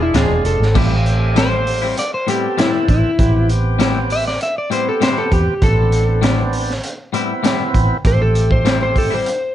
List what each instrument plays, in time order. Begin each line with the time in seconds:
Already playing: fingered electric bass E1, tonewheel organ G#3 D4 F4
0.02 electric slide guitar E4
0.14 fingered electric bass D1, clean electric guitar E3 G#3 D4 F4, electric slide guitar G#4, snare, closed hi-hat
0.30 fingered electric bass E1
0.45 fingered electric bass F1, electric slide guitar A4, closed hi-hat
0.60 fingered electric bass G#1, snare
0.75 fingered electric bass A1, clean electric guitar A2 G3 C4 E4, tonewheel organ A3 C4 G4, kick, crash
1.06 closed hi-hat
1.36 clean electric guitar A2 G3 C4 E4, electric slide guitar C5, snare, closed hi-hat
1.67 open hi-hat
1.82 clean electric guitar G3 C4 E4
1.97 electric slide guitar D5, closed hi-hat
2.14 electric slide guitar C5
2.27 clean electric guitar A2 G3 C4 E4, tonewheel organ B3 C4 A4, electric slide guitar G4, closed hi-hat
2.57 clean electric guitar A2 G3 C4 E4, electric slide guitar E4, snare, closed hi-hat
2.88 fingered electric bass A1, electric slide guitar E4, kick, closed hi-hat
3.19 fingered electric bass A1, tonewheel organ B3 C4 G4, kick, closed hi-hat
3.49 closed hi-hat
3.79 clean electric guitar A2 G3 C4 E4, snare, closed hi-hat
4.10 electric slide guitar E5, open hi-hat
4.28 electric slide guitar D5, snare
4.41 electric slide guitar E5, closed hi-hat
4.58 electric slide guitar D5
4.70 clean electric guitar A2 G3 C4 E4, tonewheel organ B3 C4 G4, electric slide guitar C5, closed hi-hat
4.89 electric slide guitar A4
5.01 clean electric guitar A2 G3 C4 E4, electric slide guitar C5, snare, closed hi-hat
5.18 electric slide guitar A4
5.32 fingered electric bass E2, electric slide guitar G4, kick, closed hi-hat
5.47 muted fingered electric bass stroke
5.62 fingered electric bass A1, tonewheel organ B3 C4 D4, electric slide guitar A4, kick, closed hi-hat
5.92 closed hi-hat
6.22 clean electric guitar A2 G3 C4 E4, snare, closed hi-hat
6.53 open hi-hat
6.70 snare
6.83 closed hi-hat
7.13 clean electric guitar A2 G3 C4 E4, tonewheel organ B3 C4 E4, closed hi-hat
7.43 clean electric guitar A2 G3 C4 E4, snare, closed hi-hat
7.74 fingered electric bass A1, kick, closed hi-hat
8.05 fingered electric bass A1, tonewheel organ A3 C4 G4, electric slide guitar C5, kick, closed hi-hat
8.22 electric slide guitar A4
8.35 closed hi-hat
8.51 electric slide guitar C5, kick
8.65 clean electric guitar A2 G3 C4 E4, snare, closed hi-hat
8.83 electric slide guitar C5
8.96 electric slide guitar A4, kick, open hi-hat
9.10 clean electric guitar G3 C4 E4, electric slide guitar C5
9.26 closed hi-hat